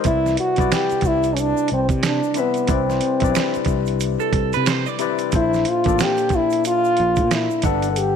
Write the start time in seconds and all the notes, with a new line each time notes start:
0.04 C2 C3 G3 E4 B4 D5, kick, closed hi-hat, shaker
0.26 snare, shaker
0.37 F#4, closed hi-hat
0.56 B1 C3 G3 E4 B4, kick, closed hi-hat
0.60 D5, shaker
0.72 G4, finger snap, snare, closed hi-hat, shaker
0.89 muted fretless electric bass stroke, closed hi-hat, shaker
1.01 C2, kick, closed hi-hat, shaker
1.07 E4
1.23 closed hi-hat, shaker
1.34 C#4, closed hi-hat, shaker
1.40 D4
1.57 shaker
1.68 C2, closed hi-hat
1.73 C4
1.89 C3, kick, closed hi-hat, shaker
2.03 D4, finger snap, snare, closed hi-hat, shaker
2.23 shaker
2.34 C3 G3 E4 B4, closed hi-hat, shaker
2.38 B3 E5
2.54 closed hi-hat, shaker
2.67 C2 C3 G3 E4 B4 D5, kick, closed hi-hat, shaker
2.73 C4
2.90 snare, shaker
3.01 closed hi-hat
3.20 B1 C3 G3 D4 B4 D5, kick, closed hi-hat
3.24 shaker
3.29 E4
3.35 finger snap, snare, closed hi-hat, shaker
3.54 muted fretless electric bass stroke, closed hi-hat, shaker
3.65 C2, kick, closed hi-hat, shaker
3.86 closed hi-hat, shaker
4.00 closed hi-hat, shaker
4.20 A4, shaker
4.33 C2, kick, closed hi-hat
4.53 C3 B4, closed hi-hat, shaker
4.66 C5, finger snap, snare, closed hi-hat, shaker
4.86 D5, shaker
4.99 C3 G3 E4 B4 D5, closed hi-hat, shaker
5.19 closed hi-hat, shaker
5.32 A#1 A#2 A#3 D4 A4 C5, kick, closed hi-hat, shaker
5.36 E4
5.54 snare, shaker
5.65 F4, closed hi-hat
5.84 A1 A#2 A#3 D4 A4, kick, closed hi-hat, shaker
5.88 D5
5.99 G4, finger snap, snare, closed hi-hat, shaker
6.17 closed hi-hat, shaker
6.29 kick, closed hi-hat, shaker
6.35 E4
6.50 closed hi-hat, shaker
6.64 F4, closed hi-hat, shaker
6.84 shaker
6.97 A#1, closed hi-hat
7.16 A#2, kick, closed hi-hat, shaker
7.31 E4, finger snap, snare, closed hi-hat, shaker
7.50 shaker
7.62 G1 G3 D4 A4 F#5, kick, closed hi-hat, shaker
7.67 B4
7.82 closed hi-hat, shaker
7.92 A4, closed hi-hat
7.96 G4, shaker